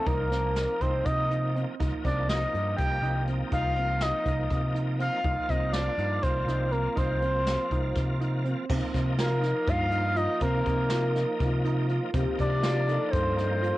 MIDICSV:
0, 0, Header, 1, 7, 480
1, 0, Start_track
1, 0, Key_signature, -3, "minor"
1, 0, Tempo, 493016
1, 63, Time_signature, 7, 3, 24, 8
1, 13414, End_track
2, 0, Start_track
2, 0, Title_t, "Analog synth lead"
2, 0, Program_c, 0, 81
2, 58, Note_on_c, 0, 70, 97
2, 786, Note_on_c, 0, 72, 89
2, 801, Note_off_c, 0, 70, 0
2, 1022, Note_on_c, 0, 75, 103
2, 1036, Note_off_c, 0, 72, 0
2, 1564, Note_off_c, 0, 75, 0
2, 1997, Note_on_c, 0, 74, 73
2, 2216, Note_off_c, 0, 74, 0
2, 2230, Note_on_c, 0, 75, 79
2, 2675, Note_off_c, 0, 75, 0
2, 2692, Note_on_c, 0, 79, 99
2, 3146, Note_off_c, 0, 79, 0
2, 3433, Note_on_c, 0, 77, 110
2, 3909, Note_on_c, 0, 75, 98
2, 3924, Note_off_c, 0, 77, 0
2, 4628, Note_off_c, 0, 75, 0
2, 4868, Note_on_c, 0, 77, 110
2, 5349, Note_on_c, 0, 75, 91
2, 5363, Note_off_c, 0, 77, 0
2, 5570, Note_off_c, 0, 75, 0
2, 5576, Note_on_c, 0, 74, 103
2, 6059, Note_on_c, 0, 72, 87
2, 6074, Note_off_c, 0, 74, 0
2, 6535, Note_on_c, 0, 70, 85
2, 6550, Note_off_c, 0, 72, 0
2, 6781, Note_off_c, 0, 70, 0
2, 6793, Note_on_c, 0, 72, 93
2, 7951, Note_off_c, 0, 72, 0
2, 8949, Note_on_c, 0, 70, 96
2, 9433, Note_on_c, 0, 77, 115
2, 9447, Note_off_c, 0, 70, 0
2, 9895, Note_on_c, 0, 75, 109
2, 9910, Note_off_c, 0, 77, 0
2, 10140, Note_off_c, 0, 75, 0
2, 10149, Note_on_c, 0, 70, 91
2, 11547, Note_off_c, 0, 70, 0
2, 12069, Note_on_c, 0, 74, 95
2, 12757, Note_on_c, 0, 72, 99
2, 12772, Note_off_c, 0, 74, 0
2, 13414, Note_off_c, 0, 72, 0
2, 13414, End_track
3, 0, Start_track
3, 0, Title_t, "Vibraphone"
3, 0, Program_c, 1, 11
3, 8468, Note_on_c, 1, 63, 68
3, 11067, Note_off_c, 1, 63, 0
3, 11102, Note_on_c, 1, 65, 84
3, 11813, Note_on_c, 1, 67, 84
3, 11845, Note_off_c, 1, 65, 0
3, 12500, Note_off_c, 1, 67, 0
3, 12537, Note_on_c, 1, 69, 97
3, 13414, Note_off_c, 1, 69, 0
3, 13414, End_track
4, 0, Start_track
4, 0, Title_t, "Grand piano"
4, 0, Program_c, 2, 0
4, 60, Note_on_c, 2, 63, 78
4, 255, Note_off_c, 2, 63, 0
4, 305, Note_on_c, 2, 60, 60
4, 693, Note_off_c, 2, 60, 0
4, 800, Note_on_c, 2, 63, 54
4, 1181, Note_off_c, 2, 63, 0
4, 1274, Note_on_c, 2, 63, 56
4, 1464, Note_off_c, 2, 63, 0
4, 1510, Note_on_c, 2, 60, 67
4, 1702, Note_off_c, 2, 60, 0
4, 1749, Note_on_c, 2, 63, 76
4, 1941, Note_off_c, 2, 63, 0
4, 1989, Note_on_c, 2, 60, 66
4, 2375, Note_off_c, 2, 60, 0
4, 2470, Note_on_c, 2, 63, 59
4, 2856, Note_off_c, 2, 63, 0
4, 2950, Note_on_c, 2, 63, 62
4, 3143, Note_off_c, 2, 63, 0
4, 3186, Note_on_c, 2, 60, 57
4, 3381, Note_off_c, 2, 60, 0
4, 3430, Note_on_c, 2, 63, 77
4, 3623, Note_off_c, 2, 63, 0
4, 3663, Note_on_c, 2, 60, 57
4, 4052, Note_off_c, 2, 60, 0
4, 4142, Note_on_c, 2, 63, 63
4, 4531, Note_off_c, 2, 63, 0
4, 4619, Note_on_c, 2, 63, 60
4, 4816, Note_off_c, 2, 63, 0
4, 4860, Note_on_c, 2, 60, 66
4, 5057, Note_off_c, 2, 60, 0
4, 5106, Note_on_c, 2, 63, 80
4, 5300, Note_off_c, 2, 63, 0
4, 5346, Note_on_c, 2, 60, 68
4, 5734, Note_off_c, 2, 60, 0
4, 5823, Note_on_c, 2, 63, 55
4, 6212, Note_off_c, 2, 63, 0
4, 6304, Note_on_c, 2, 63, 61
4, 6499, Note_off_c, 2, 63, 0
4, 6539, Note_on_c, 2, 60, 63
4, 6736, Note_off_c, 2, 60, 0
4, 6770, Note_on_c, 2, 63, 80
4, 6971, Note_off_c, 2, 63, 0
4, 7019, Note_on_c, 2, 60, 61
4, 7410, Note_off_c, 2, 60, 0
4, 7510, Note_on_c, 2, 63, 55
4, 7896, Note_off_c, 2, 63, 0
4, 7988, Note_on_c, 2, 63, 57
4, 8181, Note_off_c, 2, 63, 0
4, 8224, Note_on_c, 2, 60, 62
4, 8418, Note_off_c, 2, 60, 0
4, 8467, Note_on_c, 2, 60, 88
4, 8854, Note_off_c, 2, 60, 0
4, 8939, Note_on_c, 2, 65, 72
4, 9135, Note_off_c, 2, 65, 0
4, 9174, Note_on_c, 2, 63, 64
4, 9566, Note_off_c, 2, 63, 0
4, 9657, Note_on_c, 2, 63, 68
4, 9854, Note_off_c, 2, 63, 0
4, 9893, Note_on_c, 2, 65, 78
4, 10092, Note_off_c, 2, 65, 0
4, 10142, Note_on_c, 2, 60, 94
4, 10530, Note_off_c, 2, 60, 0
4, 10619, Note_on_c, 2, 65, 72
4, 10815, Note_off_c, 2, 65, 0
4, 10854, Note_on_c, 2, 63, 56
4, 11245, Note_off_c, 2, 63, 0
4, 11338, Note_on_c, 2, 63, 70
4, 11534, Note_off_c, 2, 63, 0
4, 11586, Note_on_c, 2, 65, 67
4, 11779, Note_off_c, 2, 65, 0
4, 11817, Note_on_c, 2, 60, 85
4, 12207, Note_off_c, 2, 60, 0
4, 12294, Note_on_c, 2, 65, 73
4, 12492, Note_off_c, 2, 65, 0
4, 12538, Note_on_c, 2, 63, 63
4, 12928, Note_off_c, 2, 63, 0
4, 13023, Note_on_c, 2, 63, 66
4, 13217, Note_off_c, 2, 63, 0
4, 13259, Note_on_c, 2, 65, 69
4, 13414, Note_off_c, 2, 65, 0
4, 13414, End_track
5, 0, Start_track
5, 0, Title_t, "Tonewheel organ"
5, 0, Program_c, 3, 16
5, 0, Note_on_c, 3, 53, 48
5, 0, Note_on_c, 3, 58, 51
5, 0, Note_on_c, 3, 63, 54
5, 1702, Note_off_c, 3, 53, 0
5, 1703, Note_off_c, 3, 58, 0
5, 1705, Note_off_c, 3, 63, 0
5, 1750, Note_on_c, 3, 53, 57
5, 1751, Note_on_c, 3, 63, 65
5, 1752, Note_on_c, 3, 58, 58
5, 5071, Note_off_c, 3, 53, 0
5, 5071, Note_off_c, 3, 63, 0
5, 5072, Note_off_c, 3, 58, 0
5, 5100, Note_on_c, 3, 53, 50
5, 5100, Note_on_c, 3, 58, 46
5, 5106, Note_on_c, 3, 65, 64
5, 8423, Note_off_c, 3, 53, 0
5, 8424, Note_off_c, 3, 58, 0
5, 8427, Note_off_c, 3, 65, 0
5, 8464, Note_on_c, 3, 53, 70
5, 8472, Note_on_c, 3, 63, 82
5, 8473, Note_on_c, 3, 58, 61
5, 11784, Note_off_c, 3, 53, 0
5, 11788, Note_off_c, 3, 63, 0
5, 11789, Note_off_c, 3, 58, 0
5, 11818, Note_on_c, 3, 53, 72
5, 11827, Note_on_c, 3, 58, 64
5, 11827, Note_on_c, 3, 63, 78
5, 13414, Note_off_c, 3, 53, 0
5, 13414, Note_off_c, 3, 58, 0
5, 13414, Note_off_c, 3, 63, 0
5, 13414, End_track
6, 0, Start_track
6, 0, Title_t, "Picked electric bass"
6, 0, Program_c, 4, 34
6, 63, Note_on_c, 4, 36, 81
6, 624, Note_off_c, 4, 36, 0
6, 788, Note_on_c, 4, 36, 75
6, 974, Note_off_c, 4, 36, 0
6, 1034, Note_on_c, 4, 48, 61
6, 1591, Note_off_c, 4, 48, 0
6, 1755, Note_on_c, 4, 36, 77
6, 1845, Note_off_c, 4, 36, 0
6, 1995, Note_on_c, 4, 36, 72
6, 2365, Note_off_c, 4, 36, 0
6, 2476, Note_on_c, 4, 43, 65
6, 2659, Note_off_c, 4, 43, 0
6, 2707, Note_on_c, 4, 36, 64
6, 2894, Note_off_c, 4, 36, 0
6, 2939, Note_on_c, 4, 36, 74
6, 3315, Note_off_c, 4, 36, 0
6, 3430, Note_on_c, 4, 36, 88
6, 3989, Note_off_c, 4, 36, 0
6, 4146, Note_on_c, 4, 36, 76
6, 4333, Note_off_c, 4, 36, 0
6, 4383, Note_on_c, 4, 48, 71
6, 4945, Note_off_c, 4, 48, 0
6, 5103, Note_on_c, 4, 36, 81
6, 5198, Note_off_c, 4, 36, 0
6, 5342, Note_on_c, 4, 36, 70
6, 5717, Note_off_c, 4, 36, 0
6, 5820, Note_on_c, 4, 43, 72
6, 6009, Note_off_c, 4, 43, 0
6, 6063, Note_on_c, 4, 36, 75
6, 6251, Note_off_c, 4, 36, 0
6, 6295, Note_on_c, 4, 36, 78
6, 6673, Note_off_c, 4, 36, 0
6, 6786, Note_on_c, 4, 36, 89
6, 7346, Note_off_c, 4, 36, 0
6, 7507, Note_on_c, 4, 36, 74
6, 7693, Note_off_c, 4, 36, 0
6, 7744, Note_on_c, 4, 48, 68
6, 8305, Note_off_c, 4, 48, 0
6, 8472, Note_on_c, 4, 48, 99
6, 8563, Note_off_c, 4, 48, 0
6, 8708, Note_on_c, 4, 48, 74
6, 9267, Note_off_c, 4, 48, 0
6, 9425, Note_on_c, 4, 43, 75
6, 9984, Note_off_c, 4, 43, 0
6, 10138, Note_on_c, 4, 48, 86
6, 10327, Note_off_c, 4, 48, 0
6, 10379, Note_on_c, 4, 48, 76
6, 10940, Note_off_c, 4, 48, 0
6, 11103, Note_on_c, 4, 48, 79
6, 11663, Note_off_c, 4, 48, 0
6, 11821, Note_on_c, 4, 48, 102
6, 11915, Note_off_c, 4, 48, 0
6, 12061, Note_on_c, 4, 48, 85
6, 12622, Note_off_c, 4, 48, 0
6, 12788, Note_on_c, 4, 43, 80
6, 13346, Note_off_c, 4, 43, 0
6, 13414, End_track
7, 0, Start_track
7, 0, Title_t, "Drums"
7, 60, Note_on_c, 9, 42, 67
7, 64, Note_on_c, 9, 36, 90
7, 158, Note_off_c, 9, 42, 0
7, 162, Note_off_c, 9, 36, 0
7, 307, Note_on_c, 9, 38, 29
7, 307, Note_on_c, 9, 42, 53
7, 404, Note_off_c, 9, 38, 0
7, 404, Note_off_c, 9, 42, 0
7, 545, Note_on_c, 9, 38, 81
7, 545, Note_on_c, 9, 42, 67
7, 642, Note_off_c, 9, 38, 0
7, 642, Note_off_c, 9, 42, 0
7, 789, Note_on_c, 9, 42, 50
7, 790, Note_on_c, 9, 36, 66
7, 887, Note_off_c, 9, 42, 0
7, 888, Note_off_c, 9, 36, 0
7, 1028, Note_on_c, 9, 42, 70
7, 1031, Note_on_c, 9, 36, 90
7, 1125, Note_off_c, 9, 42, 0
7, 1129, Note_off_c, 9, 36, 0
7, 1274, Note_on_c, 9, 42, 58
7, 1371, Note_off_c, 9, 42, 0
7, 1519, Note_on_c, 9, 42, 58
7, 1617, Note_off_c, 9, 42, 0
7, 1756, Note_on_c, 9, 36, 96
7, 1762, Note_on_c, 9, 42, 74
7, 1854, Note_off_c, 9, 36, 0
7, 1859, Note_off_c, 9, 42, 0
7, 1993, Note_on_c, 9, 42, 57
7, 1994, Note_on_c, 9, 36, 64
7, 2090, Note_off_c, 9, 42, 0
7, 2092, Note_off_c, 9, 36, 0
7, 2232, Note_on_c, 9, 38, 93
7, 2232, Note_on_c, 9, 42, 72
7, 2329, Note_off_c, 9, 38, 0
7, 2329, Note_off_c, 9, 42, 0
7, 2477, Note_on_c, 9, 42, 48
7, 2574, Note_off_c, 9, 42, 0
7, 2710, Note_on_c, 9, 42, 70
7, 2711, Note_on_c, 9, 36, 92
7, 2807, Note_off_c, 9, 42, 0
7, 2808, Note_off_c, 9, 36, 0
7, 2952, Note_on_c, 9, 42, 53
7, 3050, Note_off_c, 9, 42, 0
7, 3187, Note_on_c, 9, 42, 49
7, 3284, Note_off_c, 9, 42, 0
7, 3423, Note_on_c, 9, 42, 69
7, 3426, Note_on_c, 9, 36, 90
7, 3520, Note_off_c, 9, 42, 0
7, 3524, Note_off_c, 9, 36, 0
7, 3659, Note_on_c, 9, 42, 49
7, 3756, Note_off_c, 9, 42, 0
7, 3901, Note_on_c, 9, 38, 93
7, 3901, Note_on_c, 9, 42, 65
7, 3999, Note_off_c, 9, 38, 0
7, 3999, Note_off_c, 9, 42, 0
7, 4143, Note_on_c, 9, 42, 52
7, 4145, Note_on_c, 9, 36, 60
7, 4241, Note_off_c, 9, 42, 0
7, 4242, Note_off_c, 9, 36, 0
7, 4385, Note_on_c, 9, 36, 88
7, 4387, Note_on_c, 9, 42, 62
7, 4483, Note_off_c, 9, 36, 0
7, 4484, Note_off_c, 9, 42, 0
7, 4628, Note_on_c, 9, 42, 55
7, 4725, Note_off_c, 9, 42, 0
7, 4866, Note_on_c, 9, 42, 55
7, 4963, Note_off_c, 9, 42, 0
7, 5104, Note_on_c, 9, 36, 103
7, 5105, Note_on_c, 9, 42, 71
7, 5202, Note_off_c, 9, 36, 0
7, 5202, Note_off_c, 9, 42, 0
7, 5345, Note_on_c, 9, 36, 74
7, 5347, Note_on_c, 9, 42, 60
7, 5442, Note_off_c, 9, 36, 0
7, 5444, Note_off_c, 9, 42, 0
7, 5582, Note_on_c, 9, 38, 92
7, 5582, Note_on_c, 9, 42, 71
7, 5680, Note_off_c, 9, 38, 0
7, 5680, Note_off_c, 9, 42, 0
7, 5825, Note_on_c, 9, 42, 55
7, 5923, Note_off_c, 9, 42, 0
7, 6066, Note_on_c, 9, 36, 97
7, 6067, Note_on_c, 9, 42, 79
7, 6164, Note_off_c, 9, 36, 0
7, 6164, Note_off_c, 9, 42, 0
7, 6311, Note_on_c, 9, 38, 29
7, 6311, Note_on_c, 9, 42, 55
7, 6408, Note_off_c, 9, 38, 0
7, 6408, Note_off_c, 9, 42, 0
7, 6544, Note_on_c, 9, 42, 54
7, 6641, Note_off_c, 9, 42, 0
7, 6783, Note_on_c, 9, 42, 80
7, 6786, Note_on_c, 9, 36, 84
7, 6881, Note_off_c, 9, 42, 0
7, 6884, Note_off_c, 9, 36, 0
7, 7029, Note_on_c, 9, 42, 52
7, 7126, Note_off_c, 9, 42, 0
7, 7269, Note_on_c, 9, 38, 89
7, 7269, Note_on_c, 9, 42, 59
7, 7367, Note_off_c, 9, 38, 0
7, 7367, Note_off_c, 9, 42, 0
7, 7509, Note_on_c, 9, 36, 62
7, 7510, Note_on_c, 9, 42, 55
7, 7606, Note_off_c, 9, 36, 0
7, 7608, Note_off_c, 9, 42, 0
7, 7745, Note_on_c, 9, 38, 29
7, 7745, Note_on_c, 9, 42, 72
7, 7747, Note_on_c, 9, 36, 100
7, 7843, Note_off_c, 9, 38, 0
7, 7843, Note_off_c, 9, 42, 0
7, 7844, Note_off_c, 9, 36, 0
7, 7995, Note_on_c, 9, 42, 51
7, 8092, Note_off_c, 9, 42, 0
7, 8231, Note_on_c, 9, 42, 47
7, 8328, Note_off_c, 9, 42, 0
7, 8468, Note_on_c, 9, 36, 102
7, 8468, Note_on_c, 9, 49, 98
7, 8565, Note_off_c, 9, 36, 0
7, 8565, Note_off_c, 9, 49, 0
7, 8707, Note_on_c, 9, 36, 74
7, 8709, Note_on_c, 9, 38, 29
7, 8709, Note_on_c, 9, 42, 64
7, 8804, Note_off_c, 9, 36, 0
7, 8807, Note_off_c, 9, 38, 0
7, 8807, Note_off_c, 9, 42, 0
7, 8944, Note_on_c, 9, 38, 99
7, 8944, Note_on_c, 9, 42, 79
7, 9041, Note_off_c, 9, 38, 0
7, 9041, Note_off_c, 9, 42, 0
7, 9183, Note_on_c, 9, 38, 36
7, 9183, Note_on_c, 9, 42, 67
7, 9280, Note_off_c, 9, 38, 0
7, 9280, Note_off_c, 9, 42, 0
7, 9418, Note_on_c, 9, 42, 87
7, 9421, Note_on_c, 9, 36, 105
7, 9515, Note_off_c, 9, 42, 0
7, 9519, Note_off_c, 9, 36, 0
7, 9652, Note_on_c, 9, 42, 62
7, 9749, Note_off_c, 9, 42, 0
7, 9894, Note_on_c, 9, 42, 59
7, 9991, Note_off_c, 9, 42, 0
7, 10131, Note_on_c, 9, 42, 81
7, 10138, Note_on_c, 9, 36, 98
7, 10228, Note_off_c, 9, 42, 0
7, 10236, Note_off_c, 9, 36, 0
7, 10376, Note_on_c, 9, 42, 62
7, 10379, Note_on_c, 9, 36, 76
7, 10474, Note_off_c, 9, 42, 0
7, 10477, Note_off_c, 9, 36, 0
7, 10610, Note_on_c, 9, 38, 108
7, 10610, Note_on_c, 9, 42, 67
7, 10707, Note_off_c, 9, 38, 0
7, 10707, Note_off_c, 9, 42, 0
7, 10861, Note_on_c, 9, 38, 36
7, 10861, Note_on_c, 9, 42, 59
7, 10959, Note_off_c, 9, 38, 0
7, 10959, Note_off_c, 9, 42, 0
7, 11100, Note_on_c, 9, 42, 71
7, 11102, Note_on_c, 9, 36, 99
7, 11198, Note_off_c, 9, 42, 0
7, 11199, Note_off_c, 9, 36, 0
7, 11344, Note_on_c, 9, 42, 57
7, 11441, Note_off_c, 9, 42, 0
7, 11579, Note_on_c, 9, 42, 54
7, 11677, Note_off_c, 9, 42, 0
7, 11818, Note_on_c, 9, 42, 80
7, 11820, Note_on_c, 9, 36, 103
7, 11916, Note_off_c, 9, 42, 0
7, 11917, Note_off_c, 9, 36, 0
7, 12062, Note_on_c, 9, 36, 70
7, 12062, Note_on_c, 9, 42, 59
7, 12159, Note_off_c, 9, 36, 0
7, 12159, Note_off_c, 9, 42, 0
7, 12298, Note_on_c, 9, 38, 94
7, 12298, Note_on_c, 9, 42, 69
7, 12396, Note_off_c, 9, 38, 0
7, 12396, Note_off_c, 9, 42, 0
7, 12549, Note_on_c, 9, 42, 56
7, 12646, Note_off_c, 9, 42, 0
7, 12785, Note_on_c, 9, 36, 110
7, 12790, Note_on_c, 9, 42, 89
7, 12883, Note_off_c, 9, 36, 0
7, 12887, Note_off_c, 9, 42, 0
7, 13030, Note_on_c, 9, 38, 34
7, 13030, Note_on_c, 9, 42, 63
7, 13127, Note_off_c, 9, 38, 0
7, 13127, Note_off_c, 9, 42, 0
7, 13274, Note_on_c, 9, 42, 59
7, 13371, Note_off_c, 9, 42, 0
7, 13414, End_track
0, 0, End_of_file